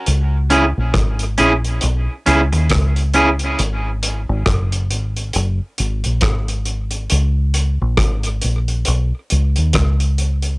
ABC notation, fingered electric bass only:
X:1
M:4/4
L:1/16
Q:"Swing 16ths" 1/4=68
K:C#dor
V:1 name="Fingered electric bass" clef=bass
C,,3 A,,, G,,,2 A,,,2 B,,, z C,, D,, C,,4 | G,,,3 G,,, F,,,2 G,,,2 F,,, z G,,, A,,, G,,,4 | C,,3 A,,, G,,,2 A,,,2 B,,, z C,, D,, C,,4 |]